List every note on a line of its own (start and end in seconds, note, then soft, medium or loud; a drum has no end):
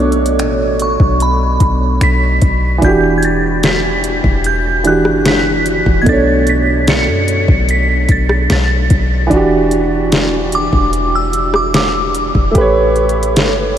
0.00 0.41 B1 loud
0.00 2.76 B2 medium
0.00 2.78 A3 medium
0.00 2.79 D4 medium
0.00 2.81 C#5 medium
0.12 closed hi-hat medium
0.26 closed hi-hat medium
0.39 0.97 A1 loud
0.39 finger snap loud
0.39 closed hi-hat medium
0.80 1.19 C#6 medium
0.80 closed hi-hat medium
1.00 1.58 B1 loud
1.00 kick loud
1.20 2.05 B5 medium
1.20 closed hi-hat medium
1.60 1.99 B1 loud
1.60 kick medium
1.60 closed hi-hat medium
2.01 2.40 B1 loud
2.01 2.86 B6 loud
2.01 finger snap loud
2.01 closed hi-hat medium
2.42 2.81 B1 loud
2.42 kick medium
2.42 closed hi-hat medium
2.78 4.79 E3 medium
2.78 4.81 D4 medium
2.78 kick loud
2.82 4.20 E1 loud
2.82 4.82 F#4 medium
2.82 3.18 G6 loud
2.82 closed hi-hat medium
2.88 4.84 G4 medium
3.18 3.24 G#6 medium
3.23 3.39 A6 medium
3.23 closed hi-hat medium
3.63 4.48 B6 loud
3.63 snare loud
3.63 closed hi-hat medium
4.04 closed hi-hat medium
4.24 5.07 E1 loud
4.24 kick loud
4.44 4.87 G6 medium
4.44 closed hi-hat medium
4.84 6.06 E3 medium
4.84 6.07 D4 soft
4.84 6.08 F#4 soft
4.84 5.28 F#6 loud
4.84 closed hi-hat medium
4.88 6.08 G4 medium
5.05 5.82 F#1 loud
5.05 cross-stick medium
5.26 6.03 B6 loud
5.26 snare loud
5.26 closed hi-hat medium
5.66 closed hi-hat medium
5.86 6.06 E1 loud
5.86 kick loud
6.02 9.25 B2 medium
6.02 6.08 G#6 medium
6.06 7.09 B1 loud
6.06 9.27 A3 medium
6.06 9.28 D4 medium
6.06 6.50 A6 loud
6.06 kick loud
6.06 closed hi-hat medium
6.12 9.30 C#5 medium
6.47 6.63 B6 loud
6.47 closed hi-hat medium
6.87 7.66 C#7 loud
6.87 snare loud
6.87 closed hi-hat medium
7.08 7.47 F#2 loud
7.28 closed hi-hat medium
7.48 8.07 B1 loud
7.48 kick loud
7.69 8.07 B6 loud
7.69 closed hi-hat medium
8.09 8.48 B1 loud
8.09 8.25 A6 loud
8.09 kick medium
8.09 closed hi-hat medium
8.29 cross-stick loud
8.50 8.89 B1 loud
8.50 9.08 A6 medium
8.50 snare loud
8.50 closed hi-hat medium
8.90 9.29 B1 loud
8.90 kick medium
8.90 closed hi-hat medium
9.27 12.49 E3 medium
9.27 12.51 D4 medium
9.31 10.69 E1 loud
9.31 12.52 F#4 medium
9.31 kick loud
9.31 closed hi-hat medium
9.36 12.53 G4 medium
9.71 closed hi-hat medium
10.12 snare loud
10.12 closed hi-hat medium
10.52 11.16 D6 medium
10.52 closed hi-hat medium
10.73 12.31 E1 loud
10.73 kick loud
10.93 closed hi-hat medium
11.15 11.56 E6 loud
11.33 closed hi-hat medium
11.54 11.75 D6 medium
11.54 cross-stick loud
11.74 12.32 D6 medium
11.74 snare loud
11.74 closed hi-hat medium
12.15 closed hi-hat medium
12.35 12.54 E1 loud
12.35 kick medium
12.51 13.38 A1 loud
12.51 13.78 A3 medium
12.51 13.78 G4 medium
12.51 kick loud
12.51 closed hi-hat medium
12.58 13.78 B4 medium
12.58 13.78 C#5 medium
12.96 closed hi-hat soft
13.09 closed hi-hat medium
13.23 closed hi-hat medium
13.36 13.78 G1 loud
13.36 snare loud
13.36 closed hi-hat medium